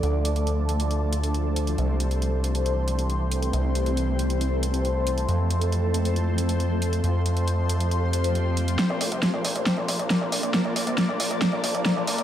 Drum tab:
HH |x-xxx-xxx-xxx-xx|x-xxx-xxx-xxx-xx|x-xxx-xxx-xxx-xx|x-xxx-xxx-xxx-xx|
SD |----------------|----------------|----------------|----------------|

HH |x-xxx-xxx-xxx-xx|x-oxx-oxx-oxx-ox|x-oxx-oxx-oxx-ox|
SD |----------------|o---o---o---o---|o---o---o---o---|